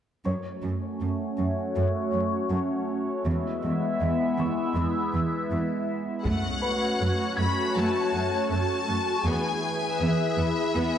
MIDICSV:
0, 0, Header, 1, 7, 480
1, 0, Start_track
1, 0, Key_signature, 3, "minor"
1, 0, Tempo, 750000
1, 163, Time_signature, 4, 2, 24, 8
1, 7028, End_track
2, 0, Start_track
2, 0, Title_t, "Felt piano"
2, 0, Program_c, 0, 0
2, 162, Note_on_c, 0, 85, 21
2, 166, Note_on_c, 0, 73, 24
2, 261, Control_c, 0, 64, 127
2, 1577, Note_off_c, 0, 85, 0
2, 1579, Note_off_c, 0, 73, 0
2, 2094, Control_c, 0, 64, 0
2, 2209, Control_c, 0, 64, 127
2, 2815, Note_on_c, 0, 85, 34
2, 3983, Note_off_c, 0, 85, 0
2, 4013, Control_c, 0, 64, 0
2, 4103, Control_c, 0, 64, 127
2, 4235, Note_on_c, 0, 83, 35
2, 4236, Note_on_c, 0, 71, 33
2, 4714, Note_on_c, 0, 92, 31
2, 5653, Note_off_c, 0, 83, 0
2, 5654, Note_off_c, 0, 71, 0
2, 5935, Control_c, 0, 64, 0
2, 6027, Control_c, 0, 64, 127
2, 6133, Note_off_c, 0, 92, 0
2, 7028, End_track
3, 0, Start_track
3, 0, Title_t, "Violin section"
3, 0, Program_c, 1, 48
3, 3997, Note_on_c, 1, 78, 62
3, 4694, Note_off_c, 1, 78, 0
3, 4726, Note_on_c, 1, 83, 56
3, 4960, Note_off_c, 1, 83, 0
3, 4966, Note_on_c, 1, 81, 49
3, 5438, Note_off_c, 1, 81, 0
3, 5445, Note_on_c, 1, 81, 60
3, 5914, Note_off_c, 1, 81, 0
3, 5926, Note_on_c, 1, 80, 62
3, 6403, Note_on_c, 1, 76, 72
3, 6404, Note_off_c, 1, 80, 0
3, 7028, Note_off_c, 1, 76, 0
3, 7028, End_track
4, 0, Start_track
4, 0, Title_t, "Analog synth pad"
4, 0, Program_c, 2, 89
4, 163, Note_on_c, 2, 57, 59
4, 163, Note_on_c, 2, 61, 54
4, 163, Note_on_c, 2, 73, 59
4, 164, Note_on_c, 2, 66, 52
4, 2057, Note_off_c, 2, 57, 0
4, 2057, Note_off_c, 2, 61, 0
4, 2057, Note_off_c, 2, 66, 0
4, 2057, Note_off_c, 2, 73, 0
4, 2075, Note_on_c, 2, 56, 60
4, 2076, Note_on_c, 2, 64, 59
4, 2077, Note_on_c, 2, 76, 59
4, 2081, Note_on_c, 2, 59, 62
4, 3999, Note_off_c, 2, 56, 0
4, 3999, Note_off_c, 2, 64, 0
4, 3999, Note_on_c, 2, 57, 62
4, 3999, Note_on_c, 2, 66, 62
4, 4000, Note_off_c, 2, 76, 0
4, 4000, Note_on_c, 2, 61, 59
4, 4001, Note_off_c, 2, 59, 0
4, 4001, Note_on_c, 2, 73, 58
4, 5895, Note_off_c, 2, 57, 0
4, 5895, Note_off_c, 2, 61, 0
4, 5895, Note_off_c, 2, 66, 0
4, 5896, Note_off_c, 2, 73, 0
4, 5924, Note_on_c, 2, 52, 53
4, 5924, Note_on_c, 2, 64, 59
4, 5926, Note_on_c, 2, 68, 61
4, 5926, Note_on_c, 2, 71, 57
4, 7028, Note_off_c, 2, 52, 0
4, 7028, Note_off_c, 2, 64, 0
4, 7028, Note_off_c, 2, 68, 0
4, 7028, Note_off_c, 2, 71, 0
4, 7028, End_track
5, 0, Start_track
5, 0, Title_t, "Viola section"
5, 0, Program_c, 3, 48
5, 4001, Note_on_c, 3, 57, 45
5, 4001, Note_on_c, 3, 66, 42
5, 4225, Note_off_c, 3, 57, 0
5, 4481, Note_on_c, 3, 57, 29
5, 4532, Note_off_c, 3, 57, 0
5, 4724, Note_on_c, 3, 57, 34
5, 4775, Note_off_c, 3, 57, 0
5, 4960, Note_on_c, 3, 57, 46
5, 5184, Note_off_c, 3, 57, 0
5, 5199, Note_on_c, 3, 57, 36
5, 5250, Note_off_c, 3, 57, 0
5, 5437, Note_on_c, 3, 57, 37
5, 5489, Note_off_c, 3, 57, 0
5, 5678, Note_on_c, 3, 57, 32
5, 5729, Note_off_c, 3, 57, 0
5, 5896, Note_off_c, 3, 66, 0
5, 5915, Note_on_c, 3, 68, 47
5, 5916, Note_on_c, 3, 59, 42
5, 6142, Note_off_c, 3, 59, 0
5, 6400, Note_on_c, 3, 59, 31
5, 6451, Note_off_c, 3, 59, 0
5, 6638, Note_on_c, 3, 59, 39
5, 6689, Note_off_c, 3, 59, 0
5, 6878, Note_on_c, 3, 59, 50
5, 7028, Note_off_c, 3, 59, 0
5, 7028, Note_off_c, 3, 68, 0
5, 7028, End_track
6, 0, Start_track
6, 0, Title_t, "Cello section"
6, 0, Program_c, 4, 48
6, 162, Note_on_c, 4, 42, 37
6, 213, Note_off_c, 4, 42, 0
6, 403, Note_on_c, 4, 42, 29
6, 454, Note_off_c, 4, 42, 0
6, 646, Note_on_c, 4, 42, 27
6, 697, Note_off_c, 4, 42, 0
6, 884, Note_on_c, 4, 42, 29
6, 935, Note_off_c, 4, 42, 0
6, 1125, Note_on_c, 4, 42, 46
6, 1176, Note_off_c, 4, 42, 0
6, 1364, Note_on_c, 4, 42, 28
6, 1415, Note_off_c, 4, 42, 0
6, 1601, Note_on_c, 4, 42, 42
6, 1652, Note_off_c, 4, 42, 0
6, 2086, Note_on_c, 4, 40, 51
6, 2137, Note_off_c, 4, 40, 0
6, 2328, Note_on_c, 4, 40, 36
6, 2379, Note_off_c, 4, 40, 0
6, 2568, Note_on_c, 4, 40, 39
6, 2620, Note_off_c, 4, 40, 0
6, 2805, Note_on_c, 4, 40, 37
6, 2856, Note_off_c, 4, 40, 0
6, 3042, Note_on_c, 4, 40, 57
6, 3093, Note_off_c, 4, 40, 0
6, 3283, Note_on_c, 4, 40, 35
6, 3335, Note_off_c, 4, 40, 0
6, 3527, Note_on_c, 4, 40, 41
6, 3578, Note_off_c, 4, 40, 0
6, 4004, Note_on_c, 4, 42, 44
6, 4055, Note_off_c, 4, 42, 0
6, 4488, Note_on_c, 4, 42, 31
6, 4539, Note_off_c, 4, 42, 0
6, 4726, Note_on_c, 4, 42, 30
6, 4777, Note_off_c, 4, 42, 0
6, 4965, Note_on_c, 4, 42, 49
6, 5016, Note_off_c, 4, 42, 0
6, 5208, Note_on_c, 4, 42, 30
6, 5259, Note_off_c, 4, 42, 0
6, 5446, Note_on_c, 4, 42, 34
6, 5498, Note_off_c, 4, 42, 0
6, 5686, Note_on_c, 4, 42, 31
6, 5737, Note_off_c, 4, 42, 0
6, 5926, Note_on_c, 4, 40, 50
6, 5978, Note_off_c, 4, 40, 0
6, 6406, Note_on_c, 4, 40, 37
6, 6457, Note_off_c, 4, 40, 0
6, 6647, Note_on_c, 4, 40, 32
6, 6698, Note_off_c, 4, 40, 0
6, 6887, Note_on_c, 4, 40, 55
6, 6938, Note_off_c, 4, 40, 0
6, 7028, End_track
7, 0, Start_track
7, 0, Title_t, "Taiko and cinematic ensemble drums"
7, 4004, Note_on_c, 9, 41, 41
7, 4068, Note_off_c, 9, 41, 0
7, 7028, End_track
0, 0, End_of_file